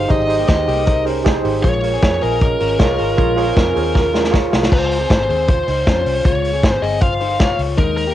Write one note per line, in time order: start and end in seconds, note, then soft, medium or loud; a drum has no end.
0.00 0.09 D#4 loud
0.00 0.09 G4 loud
0.00 0.10 G#4 medium
0.00 0.11 C5 loud
0.00 0.10 F5 medium
0.09 0.43 G#1 loud
0.09 0.38 G3 medium
0.09 0.24 D#4 loud
0.09 0.38 D#4 loud
0.09 0.24 G4 medium
0.09 0.24 G#4 medium
0.09 0.25 C5 loud
0.09 0.47 D#5 loud
0.09 kick loud
0.09 closed hi-hat medium
0.27 0.43 D#4 medium
0.27 0.43 G4 medium
0.27 0.43 G#4 medium
0.27 0.44 C5 loud
0.27 open hi-hat medium
0.39 0.67 A#3 medium
0.39 0.66 G4 medium
0.48 0.65 D#2 medium
0.48 0.62 D#4 medium
0.48 0.63 G4 medium
0.48 0.63 G#4 medium
0.48 0.63 C5 medium
0.48 1.02 D#5 medium
0.48 kick loud
0.48 snare loud
0.48 closed hi-hat medium
0.66 1.41 C2 loud
0.66 0.88 A#3 medium
0.66 0.81 D#4 medium
0.66 0.82 G4 medium
0.66 0.86 G4 medium
0.66 0.82 G#4 medium
0.66 0.82 A#4 medium
0.66 open hi-hat medium
0.86 1.01 D#4 medium
0.86 1.07 D#4 medium
0.86 1.01 G4 medium
0.86 1.01 G#4 medium
0.86 1.04 A#4 medium
0.86 1.02 C5 medium
0.86 kick loud
0.86 closed hi-hat medium
1.05 1.26 C#4 medium
1.05 1.20 D#4 medium
1.05 1.20 G4 medium
1.05 1.20 G#4 medium
1.05 1.25 A#4 medium
1.05 1.21 C5 loud
1.05 open hi-hat medium
1.24 1.39 D#4 loud
1.24 1.62 D#4 medium
1.24 1.39 G4 loud
1.24 1.40 G#4 loud
1.24 1.62 C5 medium
1.24 1.40 C5 loud
1.24 kick loud
1.24 snare loud
1.24 closed hi-hat medium
1.44 1.61 G#1 medium
1.44 1.58 D#4 medium
1.44 1.59 G4 medium
1.44 1.59 G#4 medium
1.44 1.59 C5 medium
1.44 open hi-hat medium
1.62 1.97 A#1 loud
1.62 1.92 G#3 medium
1.62 1.77 F4 loud
1.62 1.91 F4 loud
1.62 1.78 G#4 loud
1.62 1.78 A#4 medium
1.62 2.03 C#5 loud
1.62 1.79 C#5 loud
1.62 kick loud
1.62 closed hi-hat medium
1.82 1.97 F4 loud
1.82 1.97 G#4 medium
1.82 1.98 A#4 medium
1.82 1.98 C#5 loud
1.82 open hi-hat medium
1.94 2.21 C4 medium
1.94 2.20 G#4 medium
2.02 2.19 F2 medium
2.02 2.17 F4 medium
2.02 2.17 G#4 medium
2.02 2.17 A#4 medium
2.02 2.22 C#5 loud
2.02 2.18 C#5 medium
2.02 kick loud
2.02 snare loud
2.02 closed hi-hat medium
2.21 2.55 A#1 medium
2.21 2.42 C4 medium
2.21 2.36 F4 medium
2.21 2.41 G#4 medium
2.21 2.36 G#4 medium
2.21 4.33 A#4 medium
2.21 2.36 A#4 medium
2.21 2.37 D#5 medium
2.21 open hi-hat medium
2.41 2.60 C#4 medium
2.41 2.55 F4 medium
2.41 2.56 G#4 medium
2.41 2.59 A#4 medium
2.41 2.56 A#4 medium
2.41 2.56 D#5 medium
2.41 kick loud
2.41 closed hi-hat medium
2.60 2.77 G#1 loud
2.60 2.80 C#4 medium
2.60 2.74 F4 medium
2.60 2.75 G#4 medium
2.60 2.79 A#4 medium
2.60 2.75 A#4 medium
2.60 2.75 C#5 medium
2.60 open hi-hat medium
2.79 2.96 C2 loud
2.79 2.94 F4 loud
2.79 3.16 F4 medium
2.79 2.94 G#4 loud
2.79 2.94 A#4 loud
2.79 3.16 C#5 medium
2.79 2.95 D#5 loud
2.79 kick loud
2.79 snare loud
2.79 closed hi-hat medium
2.98 3.16 G#1 loud
2.98 3.13 F4 medium
2.98 3.13 G#4 medium
2.98 3.13 A#4 medium
2.98 3.14 C#5 loud
2.98 open hi-hat medium
3.17 3.51 A#1 loud
3.17 3.46 G#3 medium
3.17 3.32 F4 loud
3.17 3.45 F4 loud
3.17 3.32 G#4 loud
3.17 3.32 A#4 loud
3.17 3.32 C#5 loud
3.17 kick loud
3.17 closed hi-hat medium
3.36 3.51 F4 loud
3.36 3.51 G#4 loud
3.36 3.51 A#4 loud
3.36 3.52 C#5 loud
3.36 open hi-hat medium
3.47 3.75 C4 medium
3.47 3.74 G#4 medium
3.55 3.73 F2 loud
3.55 3.70 F4 medium
3.55 3.70 G#4 medium
3.55 3.70 A#4 medium
3.55 3.71 C#5 loud
3.55 kick loud
3.55 snare loud
3.55 closed hi-hat medium
3.75 4.49 D#2 loud
3.75 3.96 C4 medium
3.75 3.89 F4 medium
3.75 3.89 G#4 medium
3.75 3.95 G#4 medium
3.75 3.90 A#4 medium
3.75 3.90 C#5 loud
3.75 open hi-hat medium
3.94 4.14 C#4 medium
3.94 4.09 F4 medium
3.94 4.09 G#4 medium
3.94 4.13 A#4 medium
3.94 4.09 A#4 medium
3.94 4.10 C#5 medium
3.94 kick loud
3.94 snare medium
4.13 4.34 C#4 medium
4.13 4.28 F4 medium
4.13 4.28 G#4 medium
4.13 4.32 A#4 medium
4.13 4.28 A#4 medium
4.13 4.29 C#5 medium
4.13 snare medium
4.24 snare medium
4.31 4.46 F4 loud
4.31 4.69 F4 medium
4.31 4.47 G#4 loud
4.31 4.47 A#4 loud
4.31 4.69 C#5 medium
4.31 4.47 C#5 loud
4.31 kick loud
4.31 snare medium
4.51 4.69 C2 medium
4.51 4.66 F4 medium
4.51 4.66 G#4 medium
4.51 4.66 A#4 medium
4.51 4.67 C#5 loud
4.51 snare loud
4.63 snare loud
4.71 5.04 C#2 loud
4.71 4.99 G#3 medium
4.71 4.98 F4 loud
4.71 5.10 C5 medium
4.71 kick loud
4.71 crash loud
4.91 open hi-hat medium
5.00 5.28 C4 medium
5.00 5.27 G#4 medium
5.10 5.31 G#1 loud
5.10 5.46 C5 loud
5.10 kick loud
5.10 snare loud
5.10 closed hi-hat medium
5.29 5.62 D#2 medium
5.29 5.49 C4 medium
5.29 5.48 G#4 medium
5.29 open hi-hat medium
5.48 5.68 F4 medium
5.48 5.66 C5 medium
5.48 6.25 C5 loud
5.48 kick loud
5.48 closed hi-hat loud
5.68 5.84 C#2 medium
5.68 5.87 D#4 medium
5.68 5.87 C5 medium
5.68 open hi-hat medium
5.87 6.03 F2 loud
5.87 6.23 C#4 medium
5.87 6.23 F4 medium
5.87 kick loud
5.87 snare loud
5.87 closed hi-hat medium
6.05 6.22 C2 medium
6.05 open hi-hat medium
6.25 6.65 C#2 loud
6.25 6.53 G#3 medium
6.25 6.52 F4 loud
6.25 6.68 C#5 loud
6.25 kick loud
6.25 closed hi-hat medium
6.44 open hi-hat medium
6.53 6.81 C4 medium
6.53 6.81 G#4 medium
6.63 6.80 G#1 medium
6.63 kick loud
6.63 snare loud
6.63 closed hi-hat medium
6.68 6.85 C5 loud
6.82 7.55 G1 medium
6.82 7.02 C4 medium
6.82 7.02 G#4 medium
6.82 7.01 D#5 loud
6.82 open hi-hat medium
7.01 7.21 F4 medium
7.01 7.19 C5 loud
7.01 7.59 F5 loud
7.01 kick loud
7.01 closed hi-hat medium
7.20 7.40 D#4 medium
7.20 7.40 C5 medium
7.20 open hi-hat medium
7.40 7.77 F4 medium
7.40 7.76 C#5 medium
7.40 kick loud
7.40 snare loud
7.40 closed hi-hat medium
7.59 7.75 C#2 medium
7.59 open hi-hat medium
7.78 8.11 D#2 loud
7.78 8.05 G#3 medium
7.78 8.05 D#4 loud
7.78 7.96 A#4 loud
7.78 kick loud
7.78 closed hi-hat medium
7.97 8.14 A#4 loud
7.97 open hi-hat medium
8.07 8.14 A#3 medium
8.07 8.14 G4 medium